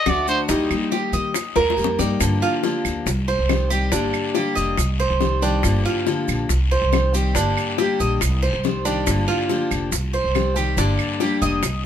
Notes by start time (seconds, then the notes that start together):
Already playing: D#5
0.06 D2 D3 A3 D4 F#4 D5, high bongo, low bongo, short guiro, claves, maracas
0.27 A3 D4 F#4 C5, high bongo, short guiro, maracas
0.49 D#2 D#3 G3 A#3 D#4 G4, high bongo, long guiro, maracas
0.70 D#3 G3 A#3 D#4 G4, claves, maracas
0.91 G4, high bongo, short guiro, maracas
1.13 D#3 D#5, high bongo, short guiro, maracas
1.34 muted steel-string acoustic guitar stroke, high bongo, long guiro, claves, maracas
1.56 D#2 A#4, high bongo, maracas
1.70 high bongo
1.77 F2 G3 A#3 D#4 G4, short guiro, maracas
1.84 low bongo
1.99 G2 G3 A#3 D#4 G4 D5, low bongo, short guiro, maracas
2.20 G2 D3 F3 A#3 D4 G4, high bongo, long guiro, claves, maracas
2.42 F4, maracas
2.63 D3 F3 A#3 D4 G4, high bongo, short guiro, maracas
2.85 D2, high bongo, short guiro, claves, maracas
3.06 C2, muted steel-string acoustic guitar stroke, high bongo, long guiro, maracas
3.28 C5, high bongo, maracas
3.39 C2
3.49 D#3 G3 C4 G4, high bongo, low bongo, short guiro, claves, maracas
3.70 D#3 G3 C4 G4, high bongo, short guiro, maracas
3.92 G1 D3 G3 A#3 D4 G4, high bongo, long guiro, maracas
4.14 claves, maracas
4.35 D3 G3 A#3 D4 G4, high bongo, short guiro, maracas
4.55 F1 D#5, high bongo, short guiro, maracas
4.78 C2, muted steel-string acoustic guitar stroke, high bongo, long guiro, claves, maracas
4.99 C5, high bongo, maracas
5.10 C2
5.21 D#3 G3 C4 G4, high bongo, low bongo, short guiro, maracas
5.42 D#3 G3 C4 D4 G4, high bongo, short guiro, maracas
5.63 G1 D3 F3 A#3 D4 G4, high bongo, long guiro, claves, maracas
5.85 F4, maracas
6.06 D3 F3 A#3 D4 G4, high bongo, short guiro, maracas
6.27 A#1, high bongo, short guiro, claves, maracas
6.49 C2, muted steel-string acoustic guitar stroke, high bongo, long guiro, maracas
6.71 C5, high bongo, maracas
6.82 C2
6.92 D#3 G3 C4 G4, high bongo, low bongo, short guiro, claves, maracas
7.14 D#3 G3 C4 G4, high bongo, short guiro, maracas
7.35 G1 D3 G3 A#3 D4 G4, high bongo, long guiro, maracas
7.57 claves, maracas
7.78 D3 G3 A#3 D4 G4, high bongo, short guiro, maracas
7.99 A#1 D#5, high bongo, short guiro, maracas
8.21 C2, muted steel-string acoustic guitar stroke, high bongo, long guiro, claves, maracas
8.42 C5, high bongo, maracas
8.53 C2
8.63 D#3 G3 C4 G4, high bongo, low bongo, short guiro, maracas
8.85 D#3 G3 C4 D4 G4, high bongo, short guiro, maracas
9.06 G1 D3 F3 A#3 D4 G4, high bongo, long guiro, claves, maracas
9.28 F4, maracas
9.49 D3 F3 A#3 D4 G4, high bongo, short guiro, maracas
9.71 F1, high bongo, short guiro, claves, maracas
9.92 C2, muted steel-string acoustic guitar stroke, high bongo, long guiro, maracas
10.13 C5, high bongo, maracas
10.24 C2
10.34 D#3 G3 C4 G4, high bongo, low bongo, short guiro, claves, maracas
10.56 D#3 G3 C4 G4, high bongo, short guiro, maracas
10.77 G1 D3 G3 A#3 D4 G4, high bongo, long guiro, maracas
10.99 claves, maracas
11.20 D3 G3 A#3 D4 G4, high bongo, short guiro, maracas
11.42 F1 D#5, high bongo, short guiro, maracas
11.63 C2, muted steel-string acoustic guitar stroke, high bongo, long guiro, claves, maracas